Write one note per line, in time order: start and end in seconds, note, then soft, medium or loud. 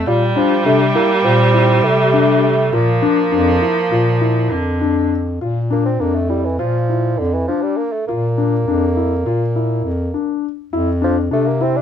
0.06 0.35 A#2 medium
0.06 2.75 G3 loud
0.06 0.38 G3 medium
0.06 0.22 F4 medium
0.36 0.65 F3 medium
0.36 0.51 D4 medium
0.66 0.93 C3 medium
0.66 0.79 A3 medium
0.66 0.81 D4 medium
0.95 1.26 A#3 medium
0.95 1.10 E4 medium
1.24 1.81 A#2 loud
1.24 1.85 C4 medium
1.24 1.39 F4 medium
1.54 1.84 E4 medium
1.84 2.69 C3 medium
1.84 2.43 A3 medium
2.13 2.43 D4 medium
2.44 2.75 A3 medium
2.73 3.01 A#2 medium
2.73 4.54 F3 medium
2.73 4.82 A#3 medium
2.73 2.88 F4 medium
3.02 3.17 D4 medium
3.32 3.60 F2 medium
3.32 3.47 D4 medium
3.62 3.77 E4 medium
3.91 4.48 A#2 medium
3.91 4.07 F4 medium
4.21 4.52 E4 medium
4.51 5.38 F2 medium
4.51 5.12 D3 medium
4.81 5.12 D4 medium
5.41 5.98 A#2 medium
5.41 5.56 F4 medium
5.70 5.85 A#3 medium
5.70 5.86 D4 medium
5.86 6.02 C4 medium
6.00 6.57 F2 medium
6.00 6.17 A#3 medium
6.00 6.15 D4 medium
6.15 6.31 A3 medium
6.29 6.46 G3 medium
6.29 6.45 E4 medium
6.44 6.58 E3 medium
6.59 7.17 A#2 medium
6.59 7.19 F3 medium
6.59 6.75 F4 medium
6.89 7.20 E4 medium
7.18 7.48 F2 medium
7.18 7.34 D3 medium
7.33 7.47 E3 medium
7.48 7.63 F3 medium
7.48 7.79 D4 medium
7.62 7.78 G3 medium
7.77 7.93 A#3 medium
7.92 8.06 A3 medium
8.07 8.65 A#2 medium
8.07 10.39 A#3 medium
8.07 8.24 F4 medium
8.38 8.53 D4 medium
8.67 9.23 F2 medium
8.67 8.83 D4 medium
8.97 9.12 E4 medium
9.26 9.82 A#2 medium
9.26 9.41 F4 medium
9.56 9.85 E4 medium
9.84 10.12 F2 medium
10.14 10.44 D4 medium
10.73 11.28 F2 medium
10.73 10.88 E4 medium
11.02 11.16 F3 medium
11.02 11.17 D4 medium
11.31 11.82 C3 medium
11.31 11.49 A3 medium
11.31 11.46 D4 medium
11.47 11.64 A#3 medium
11.61 11.78 C4 medium
11.61 11.76 E4 medium
11.76 11.82 D4 medium